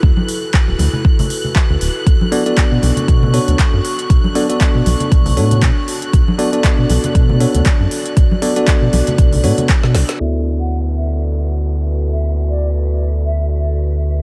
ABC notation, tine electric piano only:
X:1
M:4/4
L:1/16
Q:"Swing 16ths" 1/4=118
K:D
V:1 name="Tine electric piano"
z16 | z2 [B,DFAd] [B,DFAd]6- [B,DFAd] [B,DFAc]2 z4 | z2 [B,DFAd] [B,DFAd]6- [B,DFAd] [B,DFAc]2 z4 | z2 [B,DFAd] [B,DFAd]6- [B,DFAd] [B,DFAc]2 z4 |
z2 [B,DFAd] [B,DFAd]6- [B,DFAd] [B,DFAc]2 z4 | [B,EFAd]16- | [B,EFAd]16 |]